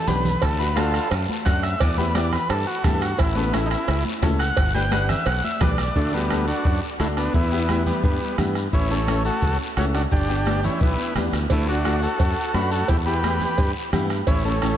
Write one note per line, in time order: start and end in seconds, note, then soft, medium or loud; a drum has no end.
0.07 0.35 B1 medium
0.07 0.26 B3 medium
0.07 0.26 D4 medium
0.07 0.26 G4 medium
0.07 0.41 B4 loud
0.07 cowbell medium
0.07 low conga medium
0.07 short guiro medium
0.25 low conga loud
0.25 short guiro medium
0.42 0.98 D2 loud
0.42 0.59 A4 medium
0.42 bombo low medium
0.42 bombo rim medium
0.42 cowbell loud
0.42 long guiro medium
0.59 0.65 A3 medium
0.59 0.65 D4 medium
0.59 0.66 F#4 medium
0.59 0.76 B4 medium
0.76 1.01 A3 medium
0.76 1.01 D4 medium
0.76 1.08 F4 medium
0.76 1.01 F#4 medium
0.76 1.10 A4 medium
0.76 bombo rim medium
0.76 cowbell medium
0.76 high conga loud
0.76 short guiro medium
0.94 bombo rim medium
0.94 short guiro medium
1.11 1.25 F#2 loud
1.11 bombo rim medium
1.11 cowbell medium
1.11 high conga soft
1.11 long guiro medium
1.29 high conga medium
1.45 1.74 F#2 medium
1.45 1.64 A3 medium
1.45 1.64 D4 medium
1.45 1.64 F#4 medium
1.45 1.62 F#5 loud
1.45 bombo low medium
1.45 bombo rim medium
1.45 cowbell medium
1.45 high conga medium
1.45 short guiro medium
1.63 1.80 E5 loud
1.63 bombo rim medium
1.63 short guiro medium
1.80 2.36 E2 loud
1.80 1.97 D5 medium
1.80 bombo low medium
1.80 bombo rim medium
1.80 cowbell loud
1.80 long guiro medium
1.98 2.04 B3 medium
1.98 2.04 E4 medium
1.98 2.04 G4 medium
1.98 2.15 B4 loud
1.98 high conga medium
2.15 2.39 B3 medium
2.15 2.40 E4 medium
2.15 2.40 G4 medium
2.15 2.32 D5 medium
2.15 bombo rim medium
2.15 cowbell medium
2.15 high conga loud
2.15 short guiro medium
2.33 2.49 B4 medium
2.33 bombo rim medium
2.33 low conga medium
2.33 short guiro medium
2.50 2.64 G2 loud
2.50 2.66 A4 medium
2.50 bombo rim medium
2.50 cowbell medium
2.50 high conga soft
2.50 long guiro medium
2.67 2.84 F#4 medium
2.84 3.12 G2 loud
2.84 3.02 B3 medium
2.84 3.03 E4 medium
2.84 3.03 G4 medium
2.84 3.01 A4 medium
2.84 bombo low medium
2.84 bombo rim medium
2.84 cowbell medium
2.84 high conga medium
2.84 low conga medium
2.84 short guiro medium
3.01 3.18 F#4 loud
3.01 bombo rim medium
3.01 short guiro medium
3.18 3.75 A1 loud
3.18 3.35 E4 loud
3.18 bombo low medium
3.18 bombo rim medium
3.18 cowbell loud
3.18 long guiro medium
3.35 3.53 B3 medium
3.35 3.42 C#4 medium
3.35 3.42 E4 medium
3.35 3.43 A4 medium
3.35 high conga medium
3.53 3.78 C#4 medium
3.53 3.69 E4 medium
3.53 3.78 E4 medium
3.53 3.78 A4 medium
3.53 bombo rim medium
3.53 cowbell medium
3.53 high conga loud
3.53 short guiro medium
3.66 3.69 D#4 medium
3.70 4.04 E4 loud
3.70 bombo rim medium
3.70 short guiro medium
3.88 4.02 C#2 medium
3.88 bombo rim medium
3.88 cowbell medium
3.88 high conga soft
3.88 long guiro medium
4.05 high conga medium
4.22 4.50 C#2 loud
4.22 4.41 C#4 medium
4.22 4.41 E4 medium
4.22 4.41 A4 loud
4.22 bombo low medium
4.22 bombo rim medium
4.22 cowbell medium
4.22 high conga medium
4.22 low timbale medium
4.22 short guiro medium
4.39 4.73 F#5 loud
4.39 bombo rim medium
4.39 short guiro medium
4.57 5.13 G1 loud
4.57 bombo low medium
4.57 bombo rim medium
4.57 cowbell loud
4.57 high conga soft
4.57 long guiro medium
4.75 4.81 D4 medium
4.75 4.81 G4 medium
4.75 4.81 B4 medium
4.75 4.91 G5 medium
4.75 high conga medium
4.91 5.16 D4 medium
4.91 5.16 G4 medium
4.91 5.17 B4 medium
4.91 5.09 F#5 medium
4.91 bombo rim loud
4.91 cowbell medium
4.91 high conga loud
4.91 short guiro medium
5.09 5.26 E5 medium
5.09 bombo rim medium
5.09 low conga medium
5.09 short guiro medium
5.26 5.40 B1 loud
5.26 5.44 F#5 medium
5.26 bombo rim medium
5.26 cowbell medium
5.26 long guiro medium
5.44 5.61 E5 medium
5.44 high conga medium
5.60 5.89 B1 loud
5.60 5.79 D4 medium
5.60 5.79 G4 medium
5.60 5.79 B4 medium
5.60 5.78 D5 medium
5.60 bombo low medium
5.60 bombo rim medium
5.60 cowbell medium
5.60 high conga medium
5.60 low conga medium
5.60 short guiro medium
5.78 5.95 D5 loud
5.78 bombo rim medium
5.78 short guiro medium
5.96 6.51 D2 loud
5.96 6.12 A3 medium
5.96 6.14 D4 loud
5.96 bombo low medium
5.96 high conga soft
5.96 long guiro medium
6.13 6.46 G3 medium
6.13 6.46 B3 loud
6.13 6.19 D4 medium
6.13 6.19 F#4 medium
6.13 6.19 A4 medium
6.30 6.55 D4 medium
6.30 6.55 F#4 medium
6.30 6.55 A4 medium
6.30 bombo rim medium
6.30 high conga medium
6.30 short guiro medium
6.48 6.80 D4 medium
6.48 6.80 F#4 medium
6.48 short guiro medium
6.65 6.79 F#2 medium
6.65 bombo low medium
6.65 high conga soft
6.65 long guiro medium
6.99 7.28 D2 medium
6.99 7.08 A3 medium
6.99 7.18 D4 medium
6.99 7.08 E4 loud
6.99 7.18 F#4 medium
6.99 7.18 A4 medium
6.99 bombo rim medium
6.99 high conga medium
6.99 short guiro medium
7.17 7.34 B3 medium
7.17 7.33 D4 medium
7.17 bombo rim medium
7.17 short guiro medium
7.34 7.90 E2 loud
7.34 7.84 B3 medium
7.34 7.83 E4 loud
7.34 bombo low medium
7.34 high conga soft
7.34 long guiro medium
7.51 7.58 B3 medium
7.51 7.58 E4 medium
7.51 7.58 G4 medium
7.68 7.93 B3 medium
7.68 7.93 E4 medium
7.68 7.94 G4 medium
7.68 bombo rim medium
7.68 high conga medium
7.68 short guiro medium
7.86 8.03 G3 medium
7.86 8.03 B3 medium
7.86 low conga medium
7.86 short guiro medium
8.04 8.18 G2 medium
8.04 8.37 G3 medium
8.04 8.37 B3 medium
8.04 bombo low medium
8.04 high conga soft
8.04 long guiro medium
8.38 8.66 G2 loud
8.38 8.56 B3 medium
8.38 8.57 E4 medium
8.38 8.57 G4 medium
8.38 bombo rim medium
8.38 high conga medium
8.38 low conga medium
8.38 short guiro medium
8.55 bombo rim medium
8.55 short guiro medium
8.73 9.29 A1 loud
8.73 8.90 C#4 medium
8.73 8.91 E4 loud
8.73 bombo low medium
8.73 high conga soft
8.73 long guiro medium
8.90 9.23 A3 medium
8.90 8.96 C#4 medium
8.90 9.23 C#4 medium
8.90 8.97 E4 medium
8.90 8.97 A4 medium
9.07 9.32 C#4 medium
9.07 9.32 E4 medium
9.07 9.32 A4 medium
9.07 bombo rim medium
9.07 high conga medium
9.07 short guiro medium
9.25 9.58 F#4 medium
9.25 9.58 A4 loud
9.25 short guiro medium
9.42 9.56 C#2 loud
9.42 bombo low medium
9.42 high conga soft
9.42 long guiro medium
9.77 10.05 C#2 loud
9.77 9.95 C#4 medium
9.77 9.86 C#4 medium
9.77 9.96 E4 medium
9.77 9.85 F#4 loud
9.77 9.96 A4 medium
9.77 bombo rim medium
9.77 high conga medium
9.77 short guiro medium
9.94 10.03 D4 medium
9.94 10.02 F#4 loud
9.94 bombo rim medium
9.94 short guiro medium
10.11 10.67 G1 loud
10.11 10.61 D4 medium
10.11 10.65 G4 loud
10.11 bombo low medium
10.11 long guiro medium
10.28 10.35 B3 medium
10.28 10.35 D4 medium
10.28 10.35 G4 medium
10.46 10.71 B3 medium
10.46 10.71 D4 medium
10.46 10.71 G4 medium
10.46 bombo rim medium
10.46 high conga medium
10.46 short guiro medium
10.64 10.81 C#4 medium
10.64 10.81 E4 medium
10.64 low conga medium
10.64 short guiro medium
10.81 10.95 B1 loud
10.81 11.14 B3 medium
10.81 11.14 E4 medium
10.81 bombo low medium
10.81 high conga soft
10.81 long guiro medium
11.15 11.31 E2 medium
11.15 11.34 B3 medium
11.15 11.34 D4 medium
11.15 11.34 G4 medium
11.15 bombo rim medium
11.15 high conga medium
11.15 low conga medium
11.15 short guiro medium
11.33 11.49 D2 medium
11.33 bombo rim medium
11.33 short guiro medium
11.50 12.06 D2 medium
11.50 11.67 A3 medium
11.50 11.67 E4 medium
11.50 bombo low medium
11.50 cowbell loud
11.50 long guiro medium
11.67 11.74 A3 medium
11.67 11.74 D4 medium
11.67 12.01 D4 medium
11.67 11.74 F#4 medium
11.67 12.02 F#4 medium
11.85 12.09 A3 medium
11.85 12.09 D4 medium
11.85 12.10 F#4 medium
11.85 bombo rim medium
11.85 high conga medium
11.85 short guiro medium
12.02 12.19 F#4 medium
12.02 12.19 A4 medium
12.02 short guiro medium
12.19 12.34 F#2 loud
12.19 12.52 F#4 medium
12.19 12.56 A4 medium
12.19 bombo low medium
12.19 cowbell medium
12.19 high conga soft
12.19 long guiro medium
12.54 12.82 F#2 medium
12.54 12.73 A3 medium
12.54 12.73 D4 medium
12.54 12.71 F#4 medium
12.54 12.73 F#4 medium
12.54 12.70 B4 loud
12.54 bombo rim medium
12.54 high conga medium
12.54 short guiro medium
12.71 12.88 F#4 medium
12.71 12.88 A4 medium
12.71 short guiro medium
12.88 13.44 E2 loud
12.88 12.97 E4 medium
12.88 12.97 G4 medium
12.88 bombo low medium
12.88 cowbell loud
12.88 high conga soft
12.88 long guiro medium
13.06 13.12 B3 medium
13.06 13.12 E4 medium
13.06 13.13 G4 medium
13.06 13.72 G4 medium
13.06 13.71 B4 medium
13.23 13.48 B3 medium
13.23 13.48 E4 medium
13.23 13.48 G4 medium
13.23 bombo rim medium
13.23 high conga medium
13.23 short guiro medium
13.41 low conga medium
13.41 short guiro medium
13.58 13.72 G2 medium
13.58 bombo low medium
13.58 cowbell medium
13.58 high conga soft
13.58 long guiro medium
13.92 14.21 G2 loud
13.92 14.11 B3 medium
13.92 14.11 E4 medium
13.92 14.11 G4 medium
13.92 bombo rim medium
13.92 high conga medium
13.92 low conga medium
13.92 short guiro medium
14.10 bombo rim medium
14.10 short guiro medium
14.27 14.77 A1 loud
14.27 14.44 C#4 medium
14.27 14.44 E4 loud
14.27 bombo low medium
14.27 cowbell loud
14.27 high conga soft
14.27 long guiro medium
14.44 14.77 A3 medium
14.44 14.51 C#4 medium
14.44 14.77 C#4 medium
14.44 14.51 E4 medium
14.44 14.51 A4 medium
14.62 14.77 C#4 medium
14.62 14.77 E4 medium
14.62 14.77 A4 medium
14.62 bombo rim medium
14.62 high conga medium
14.62 short guiro medium